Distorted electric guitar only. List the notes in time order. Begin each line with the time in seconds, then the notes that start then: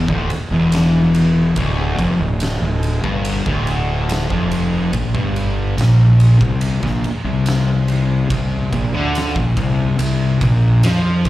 0.09 D2
0.52 E2
1.57 D2
2.00 F2
2.21 D2
2.62 D2
3.04 G2
3.46 D2
4.31 F2
4.94 A#2
5.15 G2
5.78 A#2
6.41 C3
6.82 A#2
7.25 C3
8.30 C3
8.72 A#2
8.94 D3
9.36 A#2
9.57 C3
10.00 C3
10.41 A#2
10.83 F3
11.26 C3